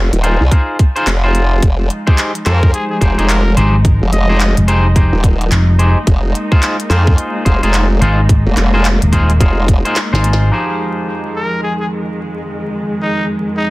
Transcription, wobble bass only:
0, 0, Header, 1, 2, 480
1, 0, Start_track
1, 0, Key_signature, -4, "minor"
1, 0, Tempo, 555556
1, 1407, Time_signature, 4, 2, 24, 8
1, 11838, End_track
2, 0, Start_track
2, 0, Title_t, "Wobble bass"
2, 0, Program_c, 0, 39
2, 0, Note_on_c, 0, 29, 98
2, 88, Note_off_c, 0, 29, 0
2, 109, Note_on_c, 0, 27, 97
2, 328, Note_off_c, 0, 27, 0
2, 350, Note_on_c, 0, 36, 93
2, 430, Note_off_c, 0, 36, 0
2, 922, Note_on_c, 0, 29, 93
2, 1389, Note_off_c, 0, 29, 0
2, 1405, Note_on_c, 0, 29, 101
2, 1631, Note_off_c, 0, 29, 0
2, 2127, Note_on_c, 0, 41, 96
2, 2352, Note_off_c, 0, 41, 0
2, 2604, Note_on_c, 0, 29, 100
2, 2729, Note_off_c, 0, 29, 0
2, 2752, Note_on_c, 0, 29, 97
2, 3071, Note_off_c, 0, 29, 0
2, 3469, Note_on_c, 0, 29, 91
2, 3549, Note_off_c, 0, 29, 0
2, 3564, Note_on_c, 0, 29, 93
2, 3929, Note_off_c, 0, 29, 0
2, 4431, Note_on_c, 0, 27, 102
2, 4750, Note_off_c, 0, 27, 0
2, 5246, Note_on_c, 0, 29, 98
2, 5471, Note_off_c, 0, 29, 0
2, 5961, Note_on_c, 0, 41, 100
2, 6189, Note_off_c, 0, 41, 0
2, 6444, Note_on_c, 0, 29, 97
2, 6569, Note_off_c, 0, 29, 0
2, 6593, Note_on_c, 0, 29, 96
2, 6912, Note_off_c, 0, 29, 0
2, 7313, Note_on_c, 0, 29, 96
2, 7392, Note_off_c, 0, 29, 0
2, 7405, Note_on_c, 0, 29, 92
2, 7769, Note_off_c, 0, 29, 0
2, 8124, Note_on_c, 0, 29, 99
2, 8489, Note_off_c, 0, 29, 0
2, 11838, End_track
0, 0, End_of_file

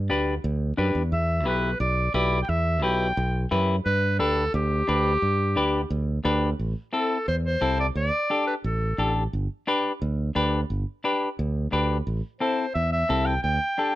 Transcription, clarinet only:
0, 0, Header, 1, 2, 480
1, 0, Start_track
1, 0, Key_signature, 1, "major"
1, 0, Tempo, 342075
1, 1572, Time_signature, 4, 2, 24, 8
1, 19577, End_track
2, 0, Start_track
2, 0, Title_t, "Clarinet"
2, 0, Program_c, 0, 71
2, 1584, Note_on_c, 0, 76, 87
2, 2024, Note_off_c, 0, 76, 0
2, 2072, Note_on_c, 0, 71, 84
2, 2508, Note_off_c, 0, 71, 0
2, 2532, Note_on_c, 0, 74, 89
2, 2977, Note_off_c, 0, 74, 0
2, 3011, Note_on_c, 0, 74, 93
2, 3365, Note_off_c, 0, 74, 0
2, 3395, Note_on_c, 0, 79, 76
2, 3494, Note_on_c, 0, 76, 99
2, 3515, Note_off_c, 0, 79, 0
2, 3966, Note_off_c, 0, 76, 0
2, 3975, Note_on_c, 0, 79, 97
2, 4875, Note_off_c, 0, 79, 0
2, 5413, Note_on_c, 0, 71, 106
2, 5857, Note_off_c, 0, 71, 0
2, 5889, Note_on_c, 0, 69, 104
2, 6335, Note_off_c, 0, 69, 0
2, 6383, Note_on_c, 0, 67, 100
2, 8719, Note_off_c, 0, 67, 0
2, 9746, Note_on_c, 0, 69, 85
2, 10185, Note_off_c, 0, 69, 0
2, 10216, Note_on_c, 0, 72, 95
2, 10323, Note_off_c, 0, 72, 0
2, 10466, Note_on_c, 0, 72, 97
2, 10905, Note_off_c, 0, 72, 0
2, 10945, Note_on_c, 0, 74, 89
2, 11050, Note_off_c, 0, 74, 0
2, 11181, Note_on_c, 0, 74, 102
2, 11846, Note_off_c, 0, 74, 0
2, 11886, Note_on_c, 0, 71, 79
2, 11995, Note_off_c, 0, 71, 0
2, 12127, Note_on_c, 0, 69, 76
2, 12799, Note_off_c, 0, 69, 0
2, 17408, Note_on_c, 0, 72, 79
2, 17858, Note_off_c, 0, 72, 0
2, 17883, Note_on_c, 0, 76, 95
2, 18112, Note_off_c, 0, 76, 0
2, 18137, Note_on_c, 0, 76, 98
2, 18605, Note_on_c, 0, 79, 91
2, 18626, Note_off_c, 0, 76, 0
2, 18838, Note_off_c, 0, 79, 0
2, 18846, Note_on_c, 0, 79, 102
2, 19520, Note_off_c, 0, 79, 0
2, 19577, End_track
0, 0, End_of_file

